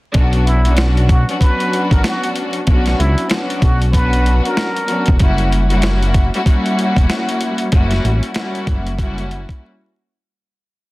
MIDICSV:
0, 0, Header, 1, 5, 480
1, 0, Start_track
1, 0, Key_signature, 2, "minor"
1, 0, Tempo, 631579
1, 111, Time_signature, 4, 2, 24, 8
1, 8294, End_track
2, 0, Start_track
2, 0, Title_t, "Muted trumpet"
2, 0, Program_c, 0, 59
2, 352, Note_on_c, 0, 64, 78
2, 568, Note_off_c, 0, 64, 0
2, 838, Note_on_c, 0, 66, 80
2, 967, Note_off_c, 0, 66, 0
2, 1064, Note_on_c, 0, 71, 97
2, 1432, Note_off_c, 0, 71, 0
2, 1460, Note_on_c, 0, 70, 74
2, 1543, Note_off_c, 0, 70, 0
2, 1558, Note_on_c, 0, 66, 76
2, 1771, Note_off_c, 0, 66, 0
2, 2272, Note_on_c, 0, 64, 83
2, 2488, Note_off_c, 0, 64, 0
2, 2758, Note_on_c, 0, 66, 85
2, 2887, Note_off_c, 0, 66, 0
2, 2983, Note_on_c, 0, 71, 94
2, 3351, Note_off_c, 0, 71, 0
2, 3386, Note_on_c, 0, 70, 77
2, 3924, Note_off_c, 0, 70, 0
2, 8294, End_track
3, 0, Start_track
3, 0, Title_t, "String section"
3, 0, Program_c, 1, 48
3, 106, Note_on_c, 1, 54, 106
3, 110, Note_on_c, 1, 59, 88
3, 112, Note_on_c, 1, 61, 83
3, 116, Note_on_c, 1, 62, 97
3, 120, Note_on_c, 1, 66, 108
3, 460, Note_off_c, 1, 54, 0
3, 463, Note_off_c, 1, 59, 0
3, 464, Note_off_c, 1, 61, 0
3, 466, Note_off_c, 1, 62, 0
3, 467, Note_off_c, 1, 66, 0
3, 489, Note_on_c, 1, 54, 94
3, 492, Note_on_c, 1, 59, 88
3, 497, Note_on_c, 1, 61, 87
3, 499, Note_on_c, 1, 62, 93
3, 503, Note_on_c, 1, 66, 100
3, 927, Note_off_c, 1, 54, 0
3, 928, Note_off_c, 1, 59, 0
3, 930, Note_off_c, 1, 61, 0
3, 932, Note_off_c, 1, 62, 0
3, 933, Note_off_c, 1, 66, 0
3, 976, Note_on_c, 1, 54, 93
3, 978, Note_on_c, 1, 59, 82
3, 983, Note_on_c, 1, 61, 82
3, 984, Note_on_c, 1, 62, 84
3, 989, Note_on_c, 1, 66, 105
3, 1049, Note_off_c, 1, 54, 0
3, 1052, Note_off_c, 1, 59, 0
3, 1055, Note_off_c, 1, 61, 0
3, 1058, Note_on_c, 1, 54, 100
3, 1059, Note_off_c, 1, 62, 0
3, 1061, Note_off_c, 1, 66, 0
3, 1061, Note_on_c, 1, 59, 89
3, 1064, Note_on_c, 1, 61, 88
3, 1068, Note_on_c, 1, 62, 94
3, 1070, Note_on_c, 1, 66, 111
3, 1965, Note_off_c, 1, 54, 0
3, 1967, Note_off_c, 1, 59, 0
3, 1969, Note_off_c, 1, 61, 0
3, 1970, Note_off_c, 1, 62, 0
3, 1972, Note_off_c, 1, 66, 0
3, 2026, Note_on_c, 1, 54, 101
3, 2029, Note_on_c, 1, 59, 88
3, 2032, Note_on_c, 1, 61, 96
3, 2035, Note_on_c, 1, 62, 94
3, 2039, Note_on_c, 1, 66, 110
3, 2479, Note_off_c, 1, 54, 0
3, 2480, Note_off_c, 1, 59, 0
3, 2482, Note_off_c, 1, 61, 0
3, 2483, Note_off_c, 1, 62, 0
3, 2485, Note_off_c, 1, 66, 0
3, 2501, Note_on_c, 1, 54, 90
3, 2505, Note_on_c, 1, 59, 84
3, 2508, Note_on_c, 1, 61, 87
3, 2512, Note_on_c, 1, 62, 84
3, 2514, Note_on_c, 1, 66, 97
3, 2957, Note_off_c, 1, 54, 0
3, 2958, Note_off_c, 1, 59, 0
3, 2960, Note_off_c, 1, 61, 0
3, 2962, Note_off_c, 1, 62, 0
3, 2963, Note_off_c, 1, 66, 0
3, 2982, Note_on_c, 1, 54, 95
3, 2984, Note_on_c, 1, 59, 85
3, 2988, Note_on_c, 1, 61, 90
3, 2991, Note_on_c, 1, 62, 90
3, 2994, Note_on_c, 1, 66, 114
3, 3662, Note_off_c, 1, 54, 0
3, 3663, Note_off_c, 1, 59, 0
3, 3665, Note_off_c, 1, 61, 0
3, 3667, Note_off_c, 1, 62, 0
3, 3668, Note_off_c, 1, 66, 0
3, 3700, Note_on_c, 1, 54, 76
3, 3704, Note_on_c, 1, 59, 73
3, 3707, Note_on_c, 1, 61, 74
3, 3710, Note_on_c, 1, 62, 75
3, 3713, Note_on_c, 1, 66, 90
3, 3931, Note_off_c, 1, 54, 0
3, 3933, Note_off_c, 1, 59, 0
3, 3934, Note_off_c, 1, 61, 0
3, 3936, Note_off_c, 1, 62, 0
3, 3937, Note_off_c, 1, 66, 0
3, 3944, Note_on_c, 1, 55, 104
3, 3946, Note_on_c, 1, 58, 86
3, 3949, Note_on_c, 1, 61, 91
3, 3953, Note_on_c, 1, 64, 93
3, 3957, Note_on_c, 1, 66, 114
3, 4300, Note_off_c, 1, 55, 0
3, 4301, Note_off_c, 1, 58, 0
3, 4302, Note_off_c, 1, 61, 0
3, 4304, Note_off_c, 1, 64, 0
3, 4306, Note_off_c, 1, 66, 0
3, 4328, Note_on_c, 1, 55, 100
3, 4330, Note_on_c, 1, 58, 99
3, 4334, Note_on_c, 1, 61, 93
3, 4337, Note_on_c, 1, 64, 90
3, 4340, Note_on_c, 1, 66, 111
3, 4766, Note_off_c, 1, 55, 0
3, 4767, Note_off_c, 1, 58, 0
3, 4769, Note_off_c, 1, 61, 0
3, 4770, Note_off_c, 1, 64, 0
3, 4772, Note_off_c, 1, 66, 0
3, 4818, Note_on_c, 1, 55, 93
3, 4822, Note_on_c, 1, 58, 89
3, 4825, Note_on_c, 1, 61, 86
3, 4828, Note_on_c, 1, 64, 89
3, 4831, Note_on_c, 1, 66, 113
3, 4889, Note_off_c, 1, 55, 0
3, 4892, Note_off_c, 1, 58, 0
3, 4895, Note_off_c, 1, 61, 0
3, 4898, Note_on_c, 1, 55, 107
3, 4899, Note_off_c, 1, 64, 0
3, 4902, Note_off_c, 1, 66, 0
3, 4902, Note_on_c, 1, 58, 91
3, 4904, Note_on_c, 1, 61, 96
3, 4908, Note_on_c, 1, 64, 93
3, 4911, Note_on_c, 1, 66, 115
3, 5805, Note_off_c, 1, 55, 0
3, 5807, Note_off_c, 1, 58, 0
3, 5808, Note_off_c, 1, 61, 0
3, 5810, Note_off_c, 1, 64, 0
3, 5812, Note_off_c, 1, 66, 0
3, 5874, Note_on_c, 1, 55, 103
3, 5877, Note_on_c, 1, 58, 88
3, 5880, Note_on_c, 1, 61, 97
3, 5884, Note_on_c, 1, 64, 93
3, 5887, Note_on_c, 1, 66, 109
3, 6323, Note_off_c, 1, 55, 0
3, 6324, Note_off_c, 1, 58, 0
3, 6326, Note_off_c, 1, 61, 0
3, 6328, Note_off_c, 1, 64, 0
3, 6329, Note_off_c, 1, 66, 0
3, 6349, Note_on_c, 1, 55, 101
3, 6352, Note_on_c, 1, 58, 89
3, 6356, Note_on_c, 1, 61, 91
3, 6359, Note_on_c, 1, 64, 90
3, 6362, Note_on_c, 1, 66, 101
3, 6800, Note_off_c, 1, 55, 0
3, 6802, Note_off_c, 1, 58, 0
3, 6804, Note_off_c, 1, 61, 0
3, 6805, Note_off_c, 1, 64, 0
3, 6807, Note_off_c, 1, 66, 0
3, 6824, Note_on_c, 1, 55, 103
3, 6828, Note_on_c, 1, 58, 90
3, 6831, Note_on_c, 1, 61, 100
3, 6835, Note_on_c, 1, 64, 98
3, 6837, Note_on_c, 1, 66, 108
3, 7308, Note_off_c, 1, 55, 0
3, 7310, Note_off_c, 1, 58, 0
3, 7311, Note_off_c, 1, 61, 0
3, 7313, Note_off_c, 1, 64, 0
3, 7314, Note_off_c, 1, 66, 0
3, 8294, End_track
4, 0, Start_track
4, 0, Title_t, "Analog synth bass"
4, 0, Program_c, 2, 38
4, 113, Note_on_c, 2, 35, 107
4, 949, Note_off_c, 2, 35, 0
4, 1454, Note_on_c, 2, 33, 95
4, 1536, Note_off_c, 2, 33, 0
4, 2033, Note_on_c, 2, 35, 112
4, 2239, Note_off_c, 2, 35, 0
4, 2274, Note_on_c, 2, 37, 98
4, 2400, Note_off_c, 2, 37, 0
4, 2752, Note_on_c, 2, 35, 91
4, 3348, Note_off_c, 2, 35, 0
4, 3861, Note_on_c, 2, 28, 95
4, 3940, Note_off_c, 2, 28, 0
4, 3953, Note_on_c, 2, 30, 101
4, 4789, Note_off_c, 2, 30, 0
4, 5294, Note_on_c, 2, 28, 92
4, 5376, Note_off_c, 2, 28, 0
4, 5873, Note_on_c, 2, 30, 108
4, 6079, Note_off_c, 2, 30, 0
4, 6114, Note_on_c, 2, 33, 95
4, 6239, Note_off_c, 2, 33, 0
4, 6591, Note_on_c, 2, 30, 100
4, 7188, Note_off_c, 2, 30, 0
4, 8294, End_track
5, 0, Start_track
5, 0, Title_t, "Drums"
5, 107, Note_on_c, 9, 42, 87
5, 112, Note_on_c, 9, 36, 118
5, 183, Note_off_c, 9, 42, 0
5, 188, Note_off_c, 9, 36, 0
5, 250, Note_on_c, 9, 42, 61
5, 326, Note_off_c, 9, 42, 0
5, 360, Note_on_c, 9, 42, 73
5, 436, Note_off_c, 9, 42, 0
5, 495, Note_on_c, 9, 42, 55
5, 571, Note_off_c, 9, 42, 0
5, 583, Note_on_c, 9, 42, 99
5, 592, Note_on_c, 9, 38, 118
5, 659, Note_off_c, 9, 42, 0
5, 668, Note_off_c, 9, 38, 0
5, 739, Note_on_c, 9, 42, 50
5, 815, Note_off_c, 9, 42, 0
5, 830, Note_on_c, 9, 36, 106
5, 831, Note_on_c, 9, 42, 84
5, 906, Note_off_c, 9, 36, 0
5, 907, Note_off_c, 9, 42, 0
5, 979, Note_on_c, 9, 42, 55
5, 1055, Note_off_c, 9, 42, 0
5, 1069, Note_on_c, 9, 36, 94
5, 1076, Note_on_c, 9, 42, 96
5, 1145, Note_off_c, 9, 36, 0
5, 1152, Note_off_c, 9, 42, 0
5, 1218, Note_on_c, 9, 42, 57
5, 1294, Note_off_c, 9, 42, 0
5, 1318, Note_on_c, 9, 42, 76
5, 1394, Note_off_c, 9, 42, 0
5, 1453, Note_on_c, 9, 36, 98
5, 1463, Note_on_c, 9, 42, 56
5, 1529, Note_off_c, 9, 36, 0
5, 1539, Note_off_c, 9, 42, 0
5, 1552, Note_on_c, 9, 38, 114
5, 1561, Note_on_c, 9, 42, 96
5, 1628, Note_off_c, 9, 38, 0
5, 1637, Note_off_c, 9, 42, 0
5, 1699, Note_on_c, 9, 42, 58
5, 1775, Note_off_c, 9, 42, 0
5, 1790, Note_on_c, 9, 42, 78
5, 1866, Note_off_c, 9, 42, 0
5, 1923, Note_on_c, 9, 42, 52
5, 1999, Note_off_c, 9, 42, 0
5, 2028, Note_on_c, 9, 42, 90
5, 2032, Note_on_c, 9, 36, 121
5, 2104, Note_off_c, 9, 42, 0
5, 2108, Note_off_c, 9, 36, 0
5, 2171, Note_on_c, 9, 42, 60
5, 2185, Note_on_c, 9, 38, 37
5, 2247, Note_off_c, 9, 42, 0
5, 2261, Note_off_c, 9, 38, 0
5, 2280, Note_on_c, 9, 42, 76
5, 2356, Note_off_c, 9, 42, 0
5, 2415, Note_on_c, 9, 42, 55
5, 2491, Note_off_c, 9, 42, 0
5, 2504, Note_on_c, 9, 42, 98
5, 2514, Note_on_c, 9, 38, 124
5, 2580, Note_off_c, 9, 42, 0
5, 2590, Note_off_c, 9, 38, 0
5, 2661, Note_on_c, 9, 42, 51
5, 2737, Note_off_c, 9, 42, 0
5, 2751, Note_on_c, 9, 36, 106
5, 2752, Note_on_c, 9, 42, 85
5, 2827, Note_off_c, 9, 36, 0
5, 2828, Note_off_c, 9, 42, 0
5, 2900, Note_on_c, 9, 42, 59
5, 2976, Note_off_c, 9, 42, 0
5, 2990, Note_on_c, 9, 36, 93
5, 2997, Note_on_c, 9, 42, 100
5, 3066, Note_off_c, 9, 36, 0
5, 3073, Note_off_c, 9, 42, 0
5, 3139, Note_on_c, 9, 42, 58
5, 3215, Note_off_c, 9, 42, 0
5, 3239, Note_on_c, 9, 42, 74
5, 3315, Note_off_c, 9, 42, 0
5, 3386, Note_on_c, 9, 42, 58
5, 3462, Note_off_c, 9, 42, 0
5, 3474, Note_on_c, 9, 38, 117
5, 3483, Note_on_c, 9, 42, 96
5, 3550, Note_off_c, 9, 38, 0
5, 3559, Note_off_c, 9, 42, 0
5, 3621, Note_on_c, 9, 42, 59
5, 3697, Note_off_c, 9, 42, 0
5, 3709, Note_on_c, 9, 42, 77
5, 3785, Note_off_c, 9, 42, 0
5, 3842, Note_on_c, 9, 42, 52
5, 3860, Note_on_c, 9, 36, 99
5, 3918, Note_off_c, 9, 42, 0
5, 3936, Note_off_c, 9, 36, 0
5, 3948, Note_on_c, 9, 42, 88
5, 3952, Note_on_c, 9, 36, 120
5, 4024, Note_off_c, 9, 42, 0
5, 4028, Note_off_c, 9, 36, 0
5, 4090, Note_on_c, 9, 42, 60
5, 4166, Note_off_c, 9, 42, 0
5, 4199, Note_on_c, 9, 42, 74
5, 4275, Note_off_c, 9, 42, 0
5, 4335, Note_on_c, 9, 42, 56
5, 4411, Note_off_c, 9, 42, 0
5, 4424, Note_on_c, 9, 42, 100
5, 4434, Note_on_c, 9, 38, 120
5, 4500, Note_off_c, 9, 42, 0
5, 4510, Note_off_c, 9, 38, 0
5, 4580, Note_on_c, 9, 42, 53
5, 4656, Note_off_c, 9, 42, 0
5, 4670, Note_on_c, 9, 36, 107
5, 4670, Note_on_c, 9, 42, 83
5, 4746, Note_off_c, 9, 36, 0
5, 4746, Note_off_c, 9, 42, 0
5, 4819, Note_on_c, 9, 42, 58
5, 4895, Note_off_c, 9, 42, 0
5, 4909, Note_on_c, 9, 36, 93
5, 4915, Note_on_c, 9, 42, 99
5, 4985, Note_off_c, 9, 36, 0
5, 4991, Note_off_c, 9, 42, 0
5, 5059, Note_on_c, 9, 42, 58
5, 5135, Note_off_c, 9, 42, 0
5, 5158, Note_on_c, 9, 42, 76
5, 5234, Note_off_c, 9, 42, 0
5, 5293, Note_on_c, 9, 36, 96
5, 5304, Note_on_c, 9, 42, 60
5, 5369, Note_off_c, 9, 36, 0
5, 5380, Note_off_c, 9, 42, 0
5, 5393, Note_on_c, 9, 38, 114
5, 5401, Note_on_c, 9, 42, 97
5, 5469, Note_off_c, 9, 38, 0
5, 5477, Note_off_c, 9, 42, 0
5, 5538, Note_on_c, 9, 42, 58
5, 5614, Note_off_c, 9, 42, 0
5, 5629, Note_on_c, 9, 42, 81
5, 5705, Note_off_c, 9, 42, 0
5, 5762, Note_on_c, 9, 42, 52
5, 5838, Note_off_c, 9, 42, 0
5, 5867, Note_on_c, 9, 42, 89
5, 5872, Note_on_c, 9, 36, 119
5, 5943, Note_off_c, 9, 42, 0
5, 5948, Note_off_c, 9, 36, 0
5, 6009, Note_on_c, 9, 42, 59
5, 6023, Note_on_c, 9, 38, 36
5, 6085, Note_off_c, 9, 42, 0
5, 6099, Note_off_c, 9, 38, 0
5, 6118, Note_on_c, 9, 42, 77
5, 6194, Note_off_c, 9, 42, 0
5, 6253, Note_on_c, 9, 42, 55
5, 6329, Note_off_c, 9, 42, 0
5, 6342, Note_on_c, 9, 42, 98
5, 6351, Note_on_c, 9, 38, 120
5, 6418, Note_off_c, 9, 42, 0
5, 6427, Note_off_c, 9, 38, 0
5, 6498, Note_on_c, 9, 42, 49
5, 6574, Note_off_c, 9, 42, 0
5, 6589, Note_on_c, 9, 36, 111
5, 6590, Note_on_c, 9, 42, 87
5, 6665, Note_off_c, 9, 36, 0
5, 6666, Note_off_c, 9, 42, 0
5, 6738, Note_on_c, 9, 42, 59
5, 6814, Note_off_c, 9, 42, 0
5, 6829, Note_on_c, 9, 36, 92
5, 6834, Note_on_c, 9, 42, 103
5, 6905, Note_off_c, 9, 36, 0
5, 6910, Note_off_c, 9, 42, 0
5, 6977, Note_on_c, 9, 42, 57
5, 7053, Note_off_c, 9, 42, 0
5, 7077, Note_on_c, 9, 42, 76
5, 7153, Note_off_c, 9, 42, 0
5, 7212, Note_on_c, 9, 36, 97
5, 7224, Note_on_c, 9, 42, 59
5, 7288, Note_off_c, 9, 36, 0
5, 7300, Note_off_c, 9, 42, 0
5, 8294, End_track
0, 0, End_of_file